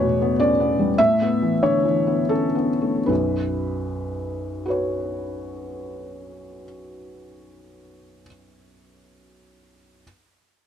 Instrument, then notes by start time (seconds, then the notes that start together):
felt piano
Already playing: E2 A2 B2 B3 B4 C#5
0.02 B2
0.22 B3
0.40 C#4 D5
0.60 B3
0.79 G3
0.98 A2 E5
1.22 B3
1.42 E3
1.63 D3 C#5
1.85 E3
2.07 B3
2.29 C#4 A4
2.55 B3
2.81 A3
3.06 B1 F#2 B4
4.66 F#4 B4
4.70 C#5